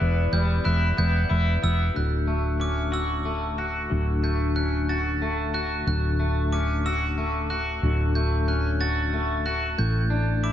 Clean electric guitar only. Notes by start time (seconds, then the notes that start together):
Already playing: B3 E4
0.01 E2
0.33 G3
0.65 E4
0.97 B3
1.30 E4
1.62 B3
1.94 D2
2.27 A3
2.60 C#4
2.92 F#4
3.25 A3
3.58 F#4
3.90 D2
4.23 A3
4.56 C#4
4.89 F#4
5.22 A3
5.54 F#4
5.87 D2
6.19 A3
6.53 C#4
6.86 F#4
7.18 A3
7.50 F#4
7.83 D2
8.16 A3
8.48 C#4
8.81 F#4
9.14 A3
9.46 F#4
9.78 A2
10.10 D4
10.43 E4